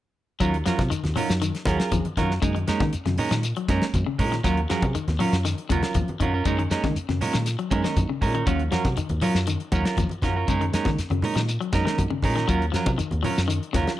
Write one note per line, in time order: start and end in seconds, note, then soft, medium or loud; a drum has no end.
0.40 0.61 D#2 loud
0.40 0.53 F#3 medium
0.40 0.56 F#3 medium
0.40 0.54 F#3 medium
0.40 0.56 C#4 medium
0.40 0.53 C#4 medium
0.40 0.56 F4 medium
0.40 0.54 F4 medium
0.40 0.56 A#4 medium
0.40 kick medium
0.40 closed hi-hat medium
0.40 shekere medium
0.54 closed hi-hat soft
0.66 0.79 F3 medium
0.66 0.91 F#3 medium
0.66 0.81 F#3 medium
0.66 0.91 C#4 medium
0.66 0.82 C#4 medium
0.66 0.91 F4 medium
0.66 0.82 F4 medium
0.66 0.82 A#4 medium
0.66 snare medium
0.66 closed hi-hat medium
0.66 shekere medium
0.79 0.89 C3 medium
0.79 kick medium
0.79 snare soft
0.79 closed hi-hat soft
0.79 high conga medium
0.79 shekere soft
0.90 1.04 D#3 medium
0.90 closed hi-hat medium
0.90 high conga soft
0.90 shekere medium
1.04 1.14 D#2 medium
1.04 snare soft
1.04 closed hi-hat soft
1.04 high conga medium
1.16 1.29 F#3 medium
1.16 1.32 F#3 medium
1.16 1.42 F#3 medium
1.16 1.32 C#4 medium
1.16 1.42 C#4 medium
1.16 1.42 D#4 medium
1.16 1.32 F4 medium
1.16 1.32 A#4 medium
1.16 open hi-hat medium
1.16 low conga medium
1.16 shekere soft
1.30 1.50 F#2 medium
1.30 snare medium
1.30 closed hi-hat soft
1.30 shekere medium
1.41 1.55 D#3 medium
1.41 closed hi-hat medium
1.41 high conga soft
1.41 shekere medium
1.55 snare soft
1.55 closed hi-hat soft
1.65 1.77 D#2 medium
1.65 1.79 F#3 medium
1.65 2.05 F#3 medium
1.65 1.79 C#4 medium
1.65 2.05 C#4 medium
1.65 1.78 F4 medium
1.65 2.05 G#4 medium
1.65 1.77 A#4 medium
1.65 kick medium
1.65 snare soft
1.65 closed hi-hat medium
1.65 high conga medium
1.65 shekere medium
1.78 1.94 F4 soft
1.78 1.94 A#4 medium
1.78 muted clean electric guitar stroke soft
1.78 snare medium
1.78 closed hi-hat soft
1.78 shekere soft
1.92 2.02 D#2 medium
1.92 2.05 F3 medium
1.92 kick medium
1.92 closed hi-hat medium
1.92 high conga medium
1.92 shekere medium
2.05 muted fingered electric bass stroke soft
2.05 closed hi-hat soft
2.05 high conga medium
2.17 2.38 F#2 medium
2.17 2.31 D#3 medium
2.17 2.33 F#3 medium
2.17 2.33 C#4 medium
2.17 2.33 F4 medium
2.17 2.33 A#4 medium
2.17 kick medium
2.17 snare soft
2.17 closed hi-hat soft
2.17 high conga medium
2.17 low conga medium
2.17 shekere soft
2.31 snare soft
2.42 2.63 F#2 loud
2.42 2.49 C#3 medium
2.42 2.55 G#3 medium
2.42 2.58 G#3 medium
2.42 2.55 A#3 medium
2.42 2.58 D#4 medium
2.42 2.56 D#4 medium
2.42 muted clean electric guitar stroke medium
2.42 kick medium
2.42 closed hi-hat medium
2.42 shekere medium
2.55 2.68 D#3 medium
2.55 closed hi-hat soft
2.67 2.83 G#3 medium
2.67 2.93 G#3 medium
2.67 2.93 A#3 medium
2.67 2.83 C#4 medium
2.67 2.83 D#4 medium
2.67 2.94 D#4 medium
2.67 2.84 A#4 medium
2.67 snare medium
2.67 closed hi-hat soft
2.67 shekere medium
2.80 2.94 C#3 medium
2.80 2.91 D#3 medium
2.80 kick medium
2.80 snare soft
2.80 closed hi-hat soft
2.80 high conga medium
2.80 shekere soft
2.93 closed hi-hat medium
2.93 high conga soft
2.93 shekere medium
3.06 3.16 F#2 medium
3.06 3.19 C#3 medium
3.06 snare soft
3.06 closed hi-hat soft
3.06 high conga medium
3.17 3.43 G#3 medium
3.17 3.34 G#3 medium
3.17 3.43 A#3 medium
3.17 3.34 C#4 medium
3.17 3.44 D#4 medium
3.17 3.34 D#4 medium
3.17 3.34 A#4 medium
3.17 open hi-hat medium
3.17 low conga medium
3.17 shekere soft
3.31 3.52 A#2 medium
3.31 3.45 D#3 medium
3.31 snare medium
3.31 closed hi-hat soft
3.31 shekere medium
3.43 closed hi-hat medium
3.43 high conga soft
3.43 shekere medium
3.56 3.70 F#3 medium
3.56 closed hi-hat soft
3.69 3.79 F#2 medium
3.69 3.84 G#3 medium
3.69 4.07 G#3 medium
3.69 4.07 A#3 medium
3.69 3.84 C#4 medium
3.69 4.07 C#4 medium
3.69 3.85 D#4 medium
3.69 3.85 A#4 medium
3.69 kick medium
3.69 snare soft
3.69 closed hi-hat soft
3.69 high conga medium
3.69 shekere medium
3.82 snare medium
3.82 closed hi-hat soft
3.82 shekere soft
3.94 4.04 F#2 loud
3.94 kick medium
3.94 closed hi-hat medium
3.94 high conga medium
3.94 shekere medium
4.06 4.20 C#3 medium
4.06 muted fingered electric bass stroke soft
4.19 4.40 A#2 medium
4.19 4.34 G#3 medium
4.19 4.34 C#4 medium
4.19 4.35 D#4 medium
4.19 4.35 A#4 medium
4.19 kick medium
4.19 open hi-hat medium
4.19 low conga medium
4.19 shekere soft
4.32 4.39 D#3 medium
4.32 snare soft
4.32 closed hi-hat soft
4.44 4.65 D#2 loud
4.44 4.59 F#3 medium
4.44 4.57 F#3 medium
4.44 4.58 F#3 medium
4.44 4.59 C#4 medium
4.44 4.57 C#4 medium
4.44 4.60 F4 medium
4.44 4.58 F4 medium
4.44 4.60 A#4 medium
4.44 kick medium
4.44 snare soft
4.44 closed hi-hat medium
4.44 shekere medium
4.57 closed hi-hat soft
4.69 4.83 F3 medium
4.69 4.95 F#3 medium
4.69 4.85 F#3 medium
4.69 4.95 C#4 medium
4.69 4.85 C#4 medium
4.69 4.85 F4 medium
4.69 4.95 G#4 medium
4.69 4.86 A#4 medium
4.69 snare medium
4.69 closed hi-hat soft
4.69 shekere medium
4.82 4.93 C3 medium
4.82 kick medium
4.82 closed hi-hat soft
4.82 high conga medium
4.82 shekere soft
4.95 5.08 D#3 medium
4.95 closed hi-hat medium
4.95 high conga soft
4.95 shekere medium
5.08 5.18 D#2 medium
5.08 snare soft
5.08 closed hi-hat soft
5.08 high conga medium
5.19 5.33 F#3 medium
5.19 5.35 F#3 medium
5.19 5.45 F#3 medium
5.19 5.35 C#4 medium
5.19 5.46 C#4 medium
5.19 5.36 F4 medium
5.19 5.46 F4 medium
5.19 5.36 A#4 medium
5.19 open hi-hat medium
5.19 low conga medium
5.19 shekere soft
5.33 5.53 F#2 medium
5.33 snare medium
5.33 closed hi-hat soft
5.33 shekere medium
5.45 5.58 D#3 medium
5.45 snare soft
5.45 closed hi-hat medium
5.45 shekere medium
5.58 closed hi-hat soft
5.69 5.81 D#2 medium
5.69 5.83 C#3 medium
5.69 5.83 F#3 medium
5.69 6.08 F#3 medium
5.69 6.09 C#4 medium
5.69 5.82 C#4 medium
5.69 5.82 F4 medium
5.69 6.09 F4 medium
5.69 5.81 A#4 medium
5.69 kick medium
5.69 closed hi-hat medium
5.69 high conga medium
5.69 shekere medium
5.83 5.98 F4 soft
5.83 5.98 A#4 medium
5.83 muted clean electric guitar stroke soft
5.83 snare medium
5.83 closed hi-hat soft
5.83 shekere soft
5.94 6.06 D#2 medium
5.94 6.09 F3 medium
5.94 kick medium
5.94 closed hi-hat medium
5.94 high conga medium
5.94 shekere medium
6.08 closed hi-hat soft
6.08 high conga medium
6.20 6.41 F#2 medium
6.20 6.34 D#3 medium
6.20 6.34 F#3 medium
6.20 6.34 C#4 medium
6.20 6.34 F4 medium
6.20 6.33 A#4 medium
6.20 kick medium
6.20 closed hi-hat soft
6.20 low conga medium
6.20 shekere soft
6.34 6.45 C#4 soft
6.34 6.46 F4 soft
6.34 6.46 A#4 medium
6.45 6.66 F#2 loud
6.45 6.53 C#3 medium
6.45 6.59 G#3 medium
6.45 6.61 G#3 medium
6.45 6.59 A#3 medium
6.45 6.62 C#4 medium
6.45 6.62 D#4 medium
6.45 6.59 D#4 medium
6.45 6.62 A#4 medium
6.45 kick medium
6.45 closed hi-hat medium
6.45 shekere medium
6.59 6.72 D#3 medium
6.59 closed hi-hat soft
6.71 6.86 G#3 medium
6.71 6.96 G#3 medium
6.71 6.96 A#3 medium
6.71 6.86 C#4 medium
6.71 6.87 D#4 medium
6.71 6.97 D#4 medium
6.71 6.87 A#4 medium
6.71 snare medium
6.71 closed hi-hat medium
6.71 shekere medium
6.84 6.98 C#3 medium
6.84 6.94 D#3 medium
6.84 kick medium
6.84 snare soft
6.84 closed hi-hat soft
6.84 high conga medium
6.84 shekere soft
6.96 closed hi-hat medium
6.96 high conga soft
6.96 shekere medium
7.09 7.19 F#2 medium
7.09 7.22 C#3 medium
7.09 snare soft
7.09 closed hi-hat soft
7.09 high conga medium
7.21 7.36 G#3 medium
7.21 7.46 G#3 medium
7.21 7.47 A#3 medium
7.21 7.37 C#4 medium
7.21 7.37 D#4 medium
7.21 7.47 F4 medium
7.21 7.37 A#4 medium
7.21 snare soft
7.21 open hi-hat medium
7.21 low conga medium
7.21 shekere soft
7.33 7.55 A#2 medium
7.33 7.47 D#3 medium
7.33 snare medium
7.33 closed hi-hat soft
7.33 shekere medium
7.46 snare soft
7.46 closed hi-hat medium
7.46 high conga soft
7.46 shekere medium
7.59 7.72 F#3 medium
7.59 closed hi-hat soft
7.71 7.82 F#2 medium
7.71 7.84 G#3 medium
7.71 8.10 G#3 medium
7.71 8.10 A#3 medium
7.71 7.83 C#4 medium
7.71 8.10 D#4 medium
7.71 7.82 A#4 medium
7.71 muted clean electric guitar stroke medium
7.71 kick medium
7.71 closed hi-hat soft
7.71 high conga medium
7.71 shekere medium
7.83 7.98 D#3 medium
7.83 7.99 C#4 soft
7.83 7.99 D#4 soft
7.83 7.99 A#4 soft
7.83 snare medium
7.83 closed hi-hat soft
7.83 shekere soft
7.97 8.07 F#2 medium
7.97 kick medium
7.97 closed hi-hat medium
7.97 high conga medium
7.97 shekere medium
8.09 8.23 C#3 medium
8.09 muted fingered electric bass stroke soft
8.21 8.43 A#2 medium
8.21 8.35 G#3 medium
8.21 8.34 C#4 medium
8.21 8.33 D#4 medium
8.21 8.33 A#4 medium
8.21 kick medium
8.21 open hi-hat medium
8.21 low conga medium
8.21 shekere soft
8.34 8.41 D#3 medium
8.34 8.46 C#4 soft
8.34 8.46 D#4 soft
8.34 8.46 A#4 medium
8.34 closed hi-hat soft
8.46 8.67 D#2 loud
8.46 8.59 F#3 medium
8.46 8.62 F#3 medium
8.46 8.61 F#3 medium
8.46 8.60 C#4 medium
8.46 8.62 C#4 medium
8.46 8.62 F4 medium
8.46 8.60 F4 medium
8.46 muted clean electric guitar stroke medium
8.46 kick medium
8.46 closed hi-hat medium
8.46 shekere medium
8.59 closed hi-hat soft
8.71 8.86 F3 medium
8.71 8.97 F#3 medium
8.71 8.87 F#3 medium
8.71 8.97 C#4 medium
8.71 8.88 C#4 medium
8.71 8.88 F4 medium
8.71 8.97 F#4 medium
8.71 8.88 A#4 medium
8.71 snare medium
8.71 closed hi-hat soft
8.71 shekere medium
8.85 8.95 C3 medium
8.85 kick medium
8.85 snare soft
8.85 closed hi-hat soft
8.85 high conga medium
8.85 shekere soft
8.97 9.11 D#3 medium
8.97 closed hi-hat medium
8.97 shekere medium
9.09 9.20 D#2 medium
9.09 closed hi-hat soft
9.09 high conga medium
9.21 9.47 F#3 medium
9.21 9.38 F#3 medium
9.21 9.36 F#3 medium
9.21 9.38 C#4 medium
9.21 9.48 C#4 medium
9.21 9.38 F4 medium
9.21 9.48 F4 medium
9.21 9.38 A#4 medium
9.21 open hi-hat medium
9.21 low conga medium
9.21 shekere soft
9.35 9.56 F#2 medium
9.35 snare medium
9.35 closed hi-hat soft
9.35 shekere medium
9.47 9.61 D#3 medium
9.47 closed hi-hat medium
9.47 high conga soft
9.47 shekere medium
9.60 closed hi-hat soft
9.72 9.83 D#2 medium
9.72 10.10 F#3 medium
9.72 9.86 F#3 medium
9.72 10.10 C#4 medium
9.72 9.85 C#4 medium
9.72 10.11 F4 medium
9.72 9.85 F4 medium
9.72 9.84 A#4 medium
9.72 kick medium
9.72 closed hi-hat soft
9.72 high conga medium
9.72 shekere medium
9.85 10.01 C#4 soft
9.85 10.01 F4 soft
9.85 10.00 A#4 soft
9.85 snare medium
9.85 closed hi-hat soft
9.85 shekere soft
9.97 10.08 D#2 medium
9.97 10.11 F3 medium
9.97 kick medium
9.97 closed hi-hat medium
9.97 high conga medium
9.97 shekere medium
10.09 closed hi-hat soft
10.09 high conga medium
10.22 10.44 F#2 medium
10.22 10.37 D#3 medium
10.22 10.36 F#3 medium
10.22 10.36 C#4 medium
10.22 10.35 F4 medium
10.22 10.35 A#4 medium
10.22 kick medium
10.22 snare soft
10.22 closed hi-hat soft
10.22 high conga medium
10.22 low conga medium
10.22 shekere soft
10.36 10.48 C#4 soft
10.36 10.49 F4 soft
10.36 10.49 A#4 soft
10.47 10.69 F#2 loud
10.47 10.55 C#3 medium
10.47 10.61 G#3 medium
10.47 10.64 G#3 medium
10.47 10.61 A#3 medium
10.47 10.64 C#4 medium
10.47 10.62 D#4 medium
10.47 10.64 D#4 medium
10.47 10.65 A#4 medium
10.47 kick medium
10.47 closed hi-hat medium
10.47 high conga soft
10.47 shekere medium
10.61 10.75 D#3 medium
10.61 closed hi-hat soft
10.73 10.98 G#3 medium
10.73 10.89 G#3 medium
10.73 10.99 A#3 medium
10.73 10.89 C#4 medium
10.73 10.99 D#4 medium
10.73 10.89 D#4 medium
10.73 10.90 A#4 medium
10.73 snare medium
10.73 closed hi-hat medium
10.73 shekere medium
10.85 11.00 C#3 medium
10.85 10.96 D#3 medium
10.85 kick medium
10.85 snare soft
10.85 closed hi-hat soft
10.85 high conga medium
10.85 shekere soft
10.97 snare soft
10.97 closed hi-hat medium
10.97 high conga soft
10.97 shekere medium
11.10 11.21 F#2 medium
11.10 11.25 C#3 medium
11.10 closed hi-hat soft
11.10 high conga medium
11.22 11.48 G#3 medium
11.22 11.49 A#3 medium
11.22 11.39 C#4 medium
11.22 11.49 D#4 medium
11.22 11.40 D#4 medium
11.22 11.40 A#4 medium
11.22 muted clean electric guitar stroke medium
11.22 open hi-hat medium
11.22 low conga medium
11.22 shekere soft
11.36 11.57 A#2 medium
11.36 11.49 D#3 medium
11.36 snare medium
11.36 closed hi-hat soft
11.36 shekere medium
11.48 closed hi-hat medium
11.48 high conga soft
11.48 shekere medium
11.61 11.74 F#3 medium
11.61 closed hi-hat soft
11.73 11.84 F#2 medium
11.73 12.11 G#3 medium
11.73 12.11 A#3 medium
11.73 11.86 C#4 medium
11.73 12.12 D#4 medium
11.73 11.86 D#4 medium
11.73 11.85 A#4 medium
11.73 kick medium
11.73 snare soft
11.73 closed hi-hat soft
11.73 high conga medium
11.73 shekere medium
11.85 11.99 D#3 medium
11.85 12.02 C#4 soft
11.85 12.02 D#4 soft
11.85 12.02 A#4 soft
11.85 snare medium
11.85 closed hi-hat soft
11.85 shekere soft
11.98 12.09 F#2 medium
11.98 kick medium
11.98 closed hi-hat medium
11.98 high conga medium
11.98 shekere medium
12.10 12.24 C#3 medium
12.10 muted fingered electric bass stroke soft
12.10 high conga medium
12.22 12.44 A#2 medium
12.22 12.37 G#3 medium
12.22 12.37 C#4 medium
12.22 12.36 D#4 medium
12.22 12.36 A#4 medium
12.22 kick medium
12.22 open hi-hat medium
12.22 high conga medium
12.22 low conga medium
12.22 shekere soft
12.36 12.43 D#3 medium
12.36 12.48 C#4 soft
12.36 12.49 D#4 soft
12.36 12.48 A#4 medium
12.36 snare soft
12.36 closed hi-hat soft
12.48 12.70 D#2 loud
12.48 12.62 F#3 medium
12.48 12.61 F#3 medium
12.48 12.65 F#3 medium
12.48 12.62 C#4 medium
12.48 12.65 C#4 medium
12.48 12.62 F4 medium
12.48 12.65 F4 medium
12.48 12.65 A#4 medium
12.48 kick medium
12.48 closed hi-hat medium
12.48 shekere medium
12.62 closed hi-hat soft
12.72 12.86 F3 medium
12.72 12.99 F#3 medium
12.72 12.90 F#3 medium
12.72 12.99 C#4 medium
12.72 13.00 F4 medium
12.72 12.91 F4 medium
12.72 snare medium
12.72 closed hi-hat soft
12.72 shekere medium
12.76 12.91 A#4 medium
12.86 12.97 C3 loud
12.86 kick medium
12.86 closed hi-hat soft
12.86 high conga medium
12.86 shekere soft
12.98 13.12 D#3 medium
12.98 closed hi-hat medium
12.98 high conga soft
12.98 shekere medium
13.11 13.23 D#2 medium
13.11 closed hi-hat soft
13.11 high conga medium
13.23 13.37 F#3 medium
13.23 13.49 F#3 medium
13.23 13.40 F#3 medium
13.23 13.50 C#4 medium
13.23 13.40 C#4 medium
13.23 13.50 F4 medium
13.23 13.40 F4 medium
13.23 13.41 A#4 medium
13.23 open hi-hat medium
13.23 low conga medium
13.23 shekere soft
13.38 13.58 F#2 medium
13.38 snare medium
13.38 closed hi-hat soft
13.38 shekere medium
13.48 13.62 D#3 medium
13.48 closed hi-hat medium
13.48 high conga soft
13.48 shekere medium
13.63 closed hi-hat soft
13.73 13.85 D#2 medium
13.73 13.87 C#3 medium
13.73 14.00 F#3 medium
13.73 13.90 F#3 medium
13.73 14.00 C#4 medium
13.73 13.91 C#4 medium
13.73 14.00 F4 medium
13.73 13.91 F4 medium
13.73 13.91 A#4 medium
13.73 kick medium
13.73 snare soft
13.73 closed hi-hat medium
13.73 high conga medium
13.73 shekere medium
13.87 snare medium
13.87 closed hi-hat soft
13.87 shekere soft